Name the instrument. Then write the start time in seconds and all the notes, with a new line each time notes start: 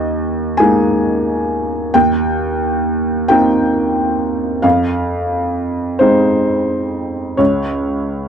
felt piano
Already playing: D#2 D#5
0.57 G#3 A#3 D#4 G#5
1.94 D#2 G5
3.28 A#3 C4 D#4 G5
4.62 F2 F5
5.99 G#3 C4 D#4 C5
7.37 C#2 C#5